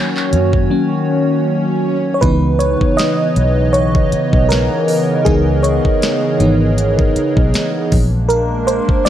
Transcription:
Already playing: D#3 F#3 A#3 C#4 F#4 C#5, swell
0.17 clap
0.33 F#2, closed hi-hat
0.53 kick
0.70 F#3 A#3 C#4
2.14 C#5
2.21 C#2 C#3 E3 B3 D#4 B4, kick, closed hi-hat
2.59 C#5, closed hi-hat
2.81 muted fingered electric bass stroke, kick
2.97 D#5, snare, closed hi-hat
3.36 B1, closed hi-hat
3.73 C#5, closed hi-hat
3.95 kick
4.12 muted fingered electric bass stroke, closed hi-hat
4.33 B1, kick
4.49 A#4, snare, closed hi-hat
4.88 open hi-hat
5.25 C#2 E3 B3 D#4 G#4, kick, closed hi-hat
5.63 C#5, closed hi-hat
5.85 muted fingered electric bass stroke, kick
6.02 snare, closed hi-hat
6.40 G#1 E3 B3 D#4, closed hi-hat
6.78 closed hi-hat
6.99 kick
7.16 muted fingered electric bass stroke, closed hi-hat
7.37 B1, kick
7.54 snare, closed hi-hat
7.92 A#1 G#3 A#3 D4, kick, open hi-hat
8.29 A#4, closed hi-hat
8.67 C5, closed hi-hat
8.89 muted fingered electric bass stroke, kick
9.05 G#3 D5, closed hi-hat

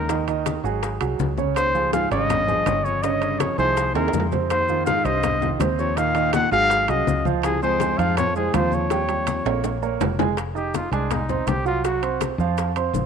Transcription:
Already playing: C#2 D#2 A#4
0.09 D#3 D#4 D#5, high bongo, high conga, high timbale, maracas
0.28 D#3 D#4 D#5, high bongo, high conga, high timbale, maracas
0.46 high bongo, high conga, high timbale, maracas
0.64 G#1 F#3 F#4 G#4, maracas
0.83 high bongo, high conga, high timbale, maracas
1.00 C2 F#3 F#4 G#4, high bongo, high conga, high timbale, maracas
1.19 C#2, high bongo, low bongo, high conga, maracas
1.38 C#3 C#4 C#5, high bongo, high conga, maracas
1.56 D#2 C5, high bongo, high conga, high timbale, maracas
1.74 F3 F4 G#4, high bongo, high conga, maracas
1.92 G#2 F3 F4 G#4 F5, high bongo, high conga, high timbale, maracas
2.11 G#1 G2 C#3 C#4 C#5 D#5, high conga, high timbale, maracas
2.30 high bongo, high conga, low conga, high timbale, maracas
2.47 F3 F4 G#4, high bongo, high conga, low conga, maracas
2.66 G1 C#3 C#4 C#5, high bongo, low bongo, high conga, high timbale, low timbale, maracas
2.84 F2 C#5, high bongo, maracas
3.03 G2 C#3 C#4 C#5 D#5, high bongo, high conga, high timbale, maracas
3.21 C#3 C#4 C#5, high bongo, high conga, high timbale, maracas
3.39 F2 C#5, high bongo, high conga, high timbale, maracas
3.58 C2 D#2 F3 E4 G#4 C5, maracas
3.77 high bongo, high conga, high timbale, maracas
3.95 D#2 C3 E4 G#4 A#4, high bongo, high timbale, maracas
4.08 high timbale
4.13 F2, high bongo, low bongo, high conga, maracas
4.20 low timbale
4.32 C3 C4 C5, high bongo, high conga, low timbale, maracas
4.50 D#2 C5, high bongo, high conga, high timbale, maracas
4.68 D#3 D#4 F4, high bongo, high conga, maracas
4.86 G#2 D#3 D#4 F4 F5, high bongo, high conga, high timbale, maracas
5.05 C2 G2 C3 C4 C5 D#5, high timbale, maracas
5.23 high bongo, high conga, low conga, high timbale, maracas
5.41 D#3 D#4 F4, high bongo, high conga, low conga, maracas
5.59 D#2 C3 C4 C5, high bongo, low bongo, high conga, high timbale, low timbale, maracas
5.79 F2 C#5, high bongo, maracas
5.96 A#2 D#3 D#4 D#5 F5, high bongo, high conga, high timbale, maracas
6.15 D#3 D#4 D#5, high bongo, high conga, high timbale, maracas
6.33 A#2 F#5, high bongo, high conga, high timbale, maracas
6.51 G#1 G#2 F#3 F#4 G#4 F5, maracas
6.70 high bongo, high conga, high timbale, maracas
6.88 C2 F#2 F#3 F#4 G#4 D#5, high bongo, high conga, high timbale, maracas
7.07 C#2, high bongo, low bongo, high conga, maracas
7.25 F3 F4 F5, high bongo, high conga, maracas
7.43 C2 G#4, high bongo, high conga, high timbale, maracas
7.62 F2 G#3 G#4 C5, high bongo, high conga, maracas
7.80 G#3 G#4 C5, high bongo, high conga, high timbale, maracas
7.98 F2 G#2 F3 F4 F5, high conga, high timbale, maracas
8.17 F2 C#5, high bongo, high conga, low conga, high timbale, maracas
8.35 C2 G#3 G#4 C5, high bongo, high conga, maracas
8.54 D#2 F2 F3 F4 C5 F5, high bongo, low bongo, high conga, high timbale, low timbale, maracas
8.72 F2 C#5, high bongo, high conga, maracas
8.90 G3 G4 G5, high bongo, high timbale, maracas
9.09 G3 G4 G5, high conga, high timbale, maracas
9.27 high conga, high timbale, maracas
9.45 A#1 A#3 A#4 C#5, high timbale, maracas
9.64 low bongo, high conga, high timbale, maracas
9.82 A#3 A#4 C#5, high conga, maracas
10.00 F1, low bongo, high conga, low timbale, maracas
10.19 G#3 G#4 G#5, low bongo, high conga, low timbale, maracas
10.37 high bongo, high timbale, maracas
10.55 D#4 G4 D#5 D#6, high bongo, high conga, maracas
10.74 F4, high bongo, high conga, high timbale, maracas
10.91 C2 G#3 D4 G#4 G#5, high timbale, maracas
11.11 D#4, high bongo, high conga, low conga, high timbale, maracas
11.29 C4 C5 C6, high bongo, high conga, low conga, maracas
11.47 C2 G4, high bongo, low bongo, high conga, high timbale, maracas
11.65 F#3 F4 F#4 F#5, high bongo, maracas
11.84 F#3 F#4 F#5, high bongo, high conga, high timbale, maracas
12.02 C4 C5 C6, high bongo, high conga, high timbale, maracas
12.21 high bongo, high conga, high timbale, maracas
12.38 F2 F3 F4 F5, maracas
12.58 high bongo, high conga, high timbale, maracas
12.76 C4 C5 C6, high bongo, high conga, high timbale, maracas
12.93 A#1, high bongo, low bongo, high conga, maracas

